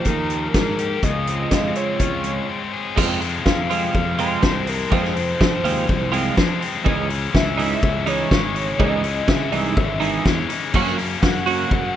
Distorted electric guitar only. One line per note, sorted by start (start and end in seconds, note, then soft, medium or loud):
0.00 0.30 D#3 medium
0.00 0.31 F3 medium
0.00 0.54 A#3 medium
0.06 1.03 D#4 medium
0.31 1.51 F3 medium
0.55 1.04 A#3 medium
0.79 1.03 G4 medium
1.04 2.25 C#3 medium
1.28 1.75 C4 medium
1.52 2.23 G#3 medium
1.76 2.48 C4 medium
1.99 2.97 F4 medium
2.24 2.96 G#3 medium
2.49 2.97 C4 medium
2.73 2.97 G#4 medium
2.96 3.44 F2 medium
2.96 3.45 C3 loud
2.96 3.23 F3 medium
2.96 3.22 G#3 loud
2.96 3.21 C4 loud
3.21 3.46 F3 medium
3.21 3.46 G#3 medium
3.21 3.47 C4 medium
3.45 4.43 F2 loud
3.45 4.42 C3 medium
3.45 4.20 F3 loud
3.45 4.19 G#3 medium
3.45 4.17 C4 medium
4.18 4.43 F3 medium
4.18 4.44 G#3 medium
4.18 4.44 C4 medium
4.43 4.91 C3 medium
4.43 4.68 F3 medium
4.43 4.67 G#3 medium
4.43 4.65 C4 medium
4.66 4.92 F3 medium
4.66 4.93 G#3 medium
4.66 4.93 C4 medium
4.92 5.38 F2 loud
4.92 5.39 C3 loud
4.92 5.17 F3 loud
4.92 5.17 G#3 loud
4.92 5.15 C4 loud
5.16 5.39 F3 medium
5.16 5.41 G#3 medium
5.16 5.40 C4 medium
5.39 6.37 F2 medium
5.39 6.35 C3 loud
5.39 6.13 F3 loud
5.39 6.12 G#3 loud
5.39 6.11 C4 loud
6.12 6.36 F3 medium
6.12 6.38 G#3 medium
6.12 6.38 C4 medium
6.36 6.84 C3 medium
6.36 6.62 F3 medium
6.36 6.62 G#3 medium
6.36 6.60 C4 medium
6.61 6.85 F3 medium
6.61 6.88 G#3 medium
6.61 6.84 C4 medium
6.86 7.32 C#3 loud
6.86 7.11 E3 loud
6.86 7.10 G#3 loud
6.86 7.09 C#4 loud
7.09 7.33 E3 medium
7.09 7.33 G#3 medium
7.09 7.34 C#4 medium
7.33 8.31 C#3 loud
7.33 8.07 E3 loud
7.33 8.06 G#3 loud
7.33 8.06 C#4 loud
8.06 8.30 E3 medium
8.06 8.31 G#3 medium
8.06 8.33 C#4 medium
8.32 8.78 C#3 medium
8.32 8.57 E3 medium
8.32 8.56 G#3 medium
8.32 8.56 C#4 medium
8.56 8.79 E3 medium
8.56 8.80 G#3 medium
8.56 8.82 C#4 medium
8.79 9.26 C#3 loud
8.79 9.05 E3 loud
8.79 9.04 G#3 loud
8.79 9.04 C#4 loud
9.04 9.27 E3 medium
9.04 9.28 G#3 medium
9.04 9.29 C#4 medium
9.28 10.24 C#3 loud
9.28 10.02 E3 medium
9.28 10.00 G#3 loud
9.28 10.00 C#4 medium
10.00 10.25 E3 medium
10.00 10.26 G#3 medium
10.00 10.27 C#4 medium
10.25 10.72 C#3 medium
10.25 10.50 E3 medium
10.25 10.49 G#3 medium
10.25 10.48 C#4 medium
10.49 10.73 E3 medium
10.49 10.73 G#3 medium
10.49 10.75 C#4 medium
10.73 11.21 F#2 medium
10.73 11.20 C#3 medium
10.73 10.99 F#3 loud
10.73 10.98 A#3 loud
10.73 10.97 C#4 loud
10.97 11.22 F#3 medium
10.97 11.23 A#3 medium
10.97 11.23 C#4 medium
11.21 11.96 F#2 medium
11.21 11.96 C#3 medium
11.21 11.96 F#3 loud
11.21 11.95 A#3 medium
11.21 11.93 C#4 medium